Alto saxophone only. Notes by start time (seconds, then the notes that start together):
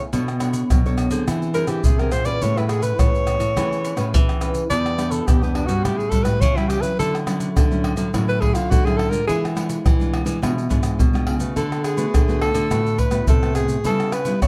1.55 A#4
1.69 G4
1.85 G#4
1.99 A#4
2.12 C5
2.26 D5
2.43 C#5
2.58 E4
2.70 G#4
2.83 B4
3.00 C#5
4.70 D5
5.12 A4
5.27 G4
5.43 B3
5.55 D4
5.67 F#4
5.84 G4
5.98 G#4
6.10 A4
6.24 B4
6.41 C#5
6.57 E4
6.69 G4
6.82 B4
6.99 A4
8.29 B4
8.41 G#4
8.54 F4
8.71 F#4
8.85 G#4
8.97 A4
9.10 A#4
9.28 G#4
11.57 A4
11.85 G#4
12.42 A4
12.99 B4
13.29 A4
13.56 G#4
13.86 A4
14.13 B4
14.43 C#5